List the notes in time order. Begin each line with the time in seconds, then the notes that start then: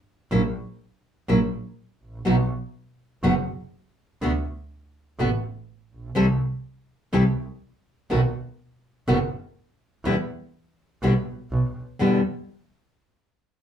0.31 A#1 F#3 A#3 C#4 E4
1.28 A#1 F#3 A#3 C#4 E4
2.02 A1
2.25 B1 B2 F#3 B3 D#4 F#4
3.23 F#1 B2 F#3 B3 D#4 F#4
4.22 D2 D3 A3 B3 F#4
5.19 A1 D3 A3 B3 F#4
5.92 A#1
6.15 C2 C3 E3 G3 C4 E4 A4
7.13 C2 C3 E3 G3 C4 E4 A4
8.10 B1 B2 D#3 A3 B3 F#4
9.08 F#1 B2 D#3 A3 B3 F#4
10.04 E2 B2 D3 G3 B3 E4
11.02 B1 B2 D3 G3 B3 E4
11.51 B1
11.99 E2 B2 D3 G3 B3 E4